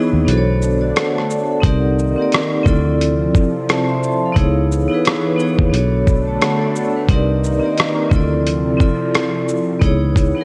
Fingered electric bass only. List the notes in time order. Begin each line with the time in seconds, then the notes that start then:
0.13 D#2
0.27 B1
1.64 C2
2.66 D2
4.36 C#2
5.59 D#2
5.73 B1
7.09 C2
8.11 D2
9.82 C#2